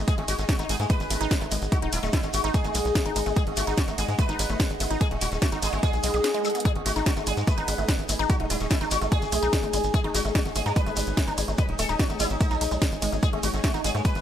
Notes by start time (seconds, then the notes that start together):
Already playing: D#4 G#4 D#5 G#5
0.08 G#3 B3 G#4, kick, closed hi-hat, shekere
0.18 G#1 G#3 A3 B3, closed hi-hat
0.28 G#1 G#3 F#4, open hi-hat, ride, shekere
0.38 G#1 G#3, closed hi-hat, shekere
0.49 A3 F#4, kick, snare, closed hi-hat, shekere
0.59 G#1 G#3 D#4, closed hi-hat, shekere
0.69 G#1 G#3 G#4, open hi-hat, ride, shekere
0.80 G#2 G#3 A3, closed hi-hat, shekere
0.90 G#3 B4, kick, closed hi-hat, shekere
1.00 G#1, closed hi-hat, shekere
1.10 G#1 A3 C#4, open hi-hat, ride, shekere
1.21 G#1 C#4 D#4 F#5, closed hi-hat, shekere
1.31 G#3, kick, snare, closed hi-hat, shekere
1.41 G#1 A3, closed hi-hat, shekere
1.51 G#1 G#3, open hi-hat, ride, shekere
1.62 G#1, closed hi-hat, shekere
1.72 A3 D#4 F#4, kick, closed hi-hat, shekere
1.82 D#1 G#3 D#4, closed hi-hat
1.92 D#1 G#3 E4, open hi-hat, ride, shekere
2.03 D#1 G#3 A3, closed hi-hat, shekere
2.13 G#3 E4, kick, snare, closed hi-hat, shekere
2.23 G#1 G#3, closed hi-hat, shekere
2.33 G#1 A3 F#4, open hi-hat, ride, shekere
2.44 G#1 G#3 D#4, closed hi-hat, shekere
2.54 G#3 G#4, kick, closed hi-hat, shekere
2.64 G#1 A3, closed hi-hat, shekere
2.75 B1 G#3, open hi-hat, ride, shekere
2.85 B1, closed hi-hat, shekere
2.95 A3, kick, snare, closed hi-hat, shekere
3.05 G#1 D#4, closed hi-hat, shekere
3.16 G#1 G#3, open hi-hat, ride, shekere
3.26 G#1 A3, closed hi-hat, shekere
3.36 G#3 B3 G#4, kick, closed hi-hat, shekere
3.47 G#1 G#3 B3, closed hi-hat
3.57 G#1 A3 F#4, open hi-hat, ride, shekere
3.67 G#1 G#3 D#4, closed hi-hat, shekere
3.77 G#3 F#4, kick, snare, closed hi-hat, shekere
3.88 G#1 G#3 A3, closed hi-hat, shekere
3.98 G#1 G#3 G#4, open hi-hat, ride, shekere
4.08 G#2 G#3, closed hi-hat, shekere
4.18 A3 B4, kick, closed hi-hat, shekere
4.29 G#1 D#4, closed hi-hat, shekere
4.39 G#1 F#3 G#3, open hi-hat, ride, shekere
4.50 G#1 F#3 A3, closed hi-hat, shekere
4.60 G#3, kick, snare, closed hi-hat, shekere
4.70 G#1, closed hi-hat, shekere
4.80 G#1 A3, open hi-hat, ride, shekere
4.91 G#1 D#4, closed hi-hat, shekere
5.01 G#3 G#4, kick, closed hi-hat, shekere
5.11 D#1 G#3 A3, closed hi-hat
5.21 D#1 G#3 F#4, open hi-hat, ride, shekere
5.32 D#1 G#3, closed hi-hat, shekere
5.42 A3 F#4, kick, snare, closed hi-hat, shekere
5.52 G#1 G#3 B3 D#4, closed hi-hat, shekere
5.62 G#1 G#3 G#4, open hi-hat, ride, shekere
5.72 G#1 G#3 A3, closed hi-hat, shekere
5.83 G#3 G#4, kick, closed hi-hat, swell, shekere
5.93 B1, closed hi-hat, shekere
6.03 B1 G#3, open hi-hat, ride, shekere
6.14 B1 G#4, closed hi-hat, shekere
6.24 G#4, snare, closed hi-hat, shekere
6.34 G#3, closed hi-hat, shekere
6.45 A4, closed hi-hat, shekere
6.50 closed hi-hat
6.55 B3, closed hi-hat, shekere
6.60 closed hi-hat
6.65 G#3 B3 G#4, kick, closed hi-hat, shekere
6.75 G#1 G#3 B3, closed hi-hat
6.86 G#1 A3 F#4, open hi-hat, ride, shekere
6.96 G#1 G#3 D#4, closed hi-hat, shekere
7.06 G#3 F#4, kick, snare, closed hi-hat, shekere
7.17 G#1 G#3 A3, closed hi-hat, shekere
7.26 G#1 G#3 G#4, open hi-hat, ride, shekere
7.37 G#2 G#3, closed hi-hat, shekere
7.47 A3 B4, kick, closed hi-hat, shekere
7.58 G#1 D#4, closed hi-hat, shekere
7.68 G#1 G#3 C#4, open hi-hat, ride, shekere
7.78 G#1 A3 C#4 G#5, closed hi-hat, shekere
7.88 G#3, kick, snare, closed hi-hat, shekere
7.99 G#1, closed hi-hat, shekere
8.09 G#1 A3, open hi-hat, ride, shekere
8.19 G#1 D#4, closed hi-hat, shekere
8.29 G#3 D#4 F#4, kick, closed hi-hat, shekere
8.40 D#1 G#3 A3 D#4, closed hi-hat
8.50 D#1 G#3 E4, open hi-hat, ride, shekere
8.60 D#1 G#3, closed hi-hat, shekere
8.70 A3 E4, kick, snare, closed hi-hat, shekere
8.81 G#1 G#3 D#4, closed hi-hat, shekere
8.91 G#1 G#3 F#4, open hi-hat, ride, shekere
9.01 G#1 G#3 A3, closed hi-hat, shekere
9.12 G#3 G#4, kick, closed hi-hat, shekere
9.22 G#1, closed hi-hat, shekere
9.32 B1 A3, open hi-hat, ride, shekere
9.42 B1 D#4, closed hi-hat, shekere
9.53 G#3, kick, snare, closed hi-hat, shekere
9.63 G#1 A3, closed hi-hat, shekere
9.73 G#1 G#3, open hi-hat, ride, shekere
9.82 G#1 C#5, closed hi-hat, shekere
9.94 A3 B3 G#4, kick, closed hi-hat, shekere
10.04 G#1 G#3 B3 D#4, closed hi-hat
10.15 G#1 G#3 F#4, open hi-hat, ride, shekere
10.25 G#1 G#3 A3, closed hi-hat, shekere
10.35 G#3 F#4, kick, snare, closed hi-hat, shekere
10.45 G#1 G#3, closed hi-hat, shekere
10.55 G#1 A3 G#4, open hi-hat, ride, shekere
10.66 G#2 G#3 D#4, closed hi-hat, shekere
10.76 G#3 B4, kick, closed hi-hat, shekere
10.86 G#1 A3, closed hi-hat, shekere
10.96 G#1 F#3 G#3, open hi-hat, ride, shekere
11.06 G#1 F#3, closed hi-hat, shekere
11.17 A3, kick, snare, closed hi-hat, shekere
11.28 G#1 D#4, closed hi-hat, shekere
11.38 G#1 G#3, open hi-hat, ride, shekere
11.48 G#1 A3, shekere
11.58 G#3 B4, kick, closed hi-hat, shekere
11.69 D#1 D#4, closed hi-hat
11.79 D#1 A3 A4, open hi-hat, ride, shekere
11.89 D#1 D#4, closed hi-hat, shekere
11.99 G#3 F#4, kick, snare, closed hi-hat, shekere
12.09 G#1 A3 B3 D#4, closed hi-hat, shekere
12.20 G#1 G#3 E4, open hi-hat, ride, shekere
12.30 G#1 D#4, closed hi-hat, shekere
12.40 A3 D#4, kick, closed hi-hat, shekere
12.51 B1 D#4, closed hi-hat, shekere
12.61 B1 D#4, open hi-hat, ride, shekere
12.71 B1 G#3, closed hi-hat, shekere
12.82 G#3, kick, snare, closed hi-hat, shekere
12.92 G#1, closed hi-hat, shekere
13.02 G#1 G#3, open hi-hat, ride, shekere
13.12 G#1 A3, closed hi-hat, shekere
13.23 G#3 B3 G#4, kick, closed hi-hat, shekere
13.33 G#1 G#3 A3 B3, closed hi-hat
13.43 G#1 G#3 F#4, open hi-hat, ride, shekere
13.54 G#1 G#3, closed hi-hat, shekere
13.64 A3 F#4, kick, snare, closed hi-hat, shekere
13.74 G#1 G#3 D#4, closed hi-hat, shekere
13.84 G#1 G#3 G#4, open hi-hat, ride, shekere
13.95 G#2 G#3 A3, closed hi-hat, shekere
14.05 G#3 B4, kick, closed hi-hat, shekere
14.15 G#1, closed hi-hat, shekere